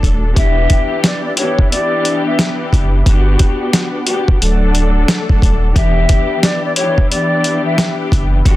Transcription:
Already playing: F#3 A3 D4 A4
0.03 D#1, kick, closed hi-hat
0.34 E1 E3 B3 D4 G4 E5, kick, closed hi-hat
0.39 B4 E5
0.70 kick, closed hi-hat
1.04 D5, snare, closed hi-hat
1.25 D5
1.37 E3 B3 D4 G4 C#5, closed hi-hat
1.59 kick
1.71 E3 B3 D4 G4 D5, closed hi-hat
2.05 closed hi-hat
2.27 E5
2.39 snare, closed hi-hat
2.73 F#1, kick, closed hi-hat
3.06 G1 B3 D4 F#4 G4 F#5, kick, closed hi-hat
3.39 kick, closed hi-hat
3.73 snare, closed hi-hat
4.07 B3 D4 F#4 G4, closed hi-hat
4.28 kick
4.40 D1 F#3 A3 D4 A4 D5, closed hi-hat
4.75 closed hi-hat
5.08 snare, closed hi-hat
5.29 kick
5.42 D#1, kick, closed hi-hat
5.73 E1 E3 B3 D4 G4 E5, kick, closed hi-hat
5.78 B4 E5
6.09 kick, closed hi-hat
6.43 D5, snare, closed hi-hat
6.65 D5
6.76 E3 B3 D4 G4 C#5, closed hi-hat
6.98 kick
7.10 E3 B3 D4 G4 D5, closed hi-hat
7.44 closed hi-hat
7.66 E5
7.78 snare, closed hi-hat
8.12 F#1, kick, closed hi-hat
8.45 G1 B3 D4 F#4 G4 F#5, kick, closed hi-hat

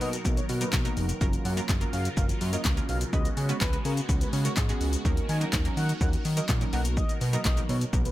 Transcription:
Already playing: B2 D#3 F#3 A#3 B3 D#4 F#4 A#4
0.01 B2 D#5, open hi-hat, shaker
0.13 closed hi-hat, shaker
0.25 B1 F#3 A#3 B3 D#4 A#4, kick, shaker
0.37 C#5, closed hi-hat, shaker
0.49 B2, open hi-hat, shaker
0.61 F#3 A#3 B3 D#4 A#4 B4, closed hi-hat, shaker
0.73 B1, kick, snare, clap, shaker
0.85 F#3 A#3 B3 D#4 A#4, closed hi-hat, shaker
0.97 F1, open hi-hat, shaker
1.09 closed hi-hat, shaker
1.21 F#1 C#3 F#3 A#3 C#4 F4 A#4, kick, shaker
1.33 closed hi-hat, shaker
1.45 F#2 F#5, open hi-hat, shaker
1.57 F#3 A#3 C#4 F4 A#4, closed hi-hat, shaker
1.69 F#1, kick, snare, clap, shaker
1.81 F#3 A#3 C#4 F4 A#4, closed hi-hat, shaker
1.93 F#2 F5, open hi-hat, shaker
2.05 closed hi-hat, shaker
2.17 F#1 F#3 A#3 C#4 F4 A#4 F5, kick, shaker
2.29 closed hi-hat, shaker
2.41 F#2, open hi-hat, shaker
2.53 F#3 A#3 C#4 F4 A#4 D#5, closed hi-hat, shaker
2.65 C#2, kick, snare, clap, shaker
2.77 F#3 A#3 C#4 F4 A#4, closed hi-hat, shaker
2.89 B1 F5, open hi-hat, shaker
3.01 closed hi-hat, shaker
3.13 C#2 G#3 B3 C#4 F#4 B4 D#5, kick, shaker
3.25 closed hi-hat, shaker
3.37 C#3, open hi-hat, shaker
3.49 G#3 B3 C#4 F#4 B4 C#5, closed hi-hat, shaker
3.61 C#2 B4, kick, snare, clap, shaker
3.73 G#3 B3 C#4 F#4 B4, closed hi-hat, shaker
3.85 C#3 A#4, open hi-hat, shaker
3.97 closed hi-hat, shaker
4.09 C#2 G#3 B3 C#4 F#4 B4, kick, shaker
4.21 B4, closed hi-hat, shaker
4.33 C#3, open hi-hat, shaker
4.45 G#3 B3 C#4 F#4 A#4 C#5, closed hi-hat, shaker
4.57 G#2, kick, snare, clap, shaker
4.69 G#3 B3 C#4 F#4 G#4, closed hi-hat, shaker
4.81 C#2, open hi-hat, shaker
4.93 closed hi-hat, shaker
5.05 D#2 F#3 A#3 C#4 D#4 A#4, kick, shaker
5.17 closed hi-hat, shaker
5.29 D#3 G#5, open hi-hat, shaker
5.41 F#3 A#3 C#4 D#4 A#4, closed hi-hat, shaker
5.53 D#2, kick, snare, clap, shaker
5.65 F#3 A#3 C#4 D#4 A#4, closed hi-hat, shaker
5.77 D#3 F#5, open hi-hat, shaker
5.89 closed hi-hat, shaker
6.01 D#2 F#3 A#3 C#4 D#4 A#4 F#5, kick, shaker
6.13 closed hi-hat, shaker
6.25 D#3, open hi-hat, shaker
6.37 F#3 A#3 C#4 D#4 A#4 D#5, closed hi-hat, shaker
6.49 A#2, kick, snare, clap, shaker
6.61 F#3 A#3 C#4 D#4 A#4, closed hi-hat, shaker
6.73 B1 B2 F#3 A#3 B3 D#4 A#4 F#5, open hi-hat, shaker
6.85 closed hi-hat, shaker
6.97 D#5, kick, shaker
7.09 closed hi-hat, shaker
7.21 B2, open hi-hat, shaker
7.33 F#3 A#3 B3 D#4 A#4 D#5, closed hi-hat, shaker
7.45 B1 D#5, kick, snare, clap, shaker
7.57 F#3 A#3 B3 D#4 A#4, closed hi-hat, shaker
7.69 B2 C#5, open hi-hat, shaker
7.81 closed hi-hat, shaker
7.93 B1 F#3 A#3 B3 D#4 A#4, kick, shaker
8.05 B4, closed hi-hat, shaker

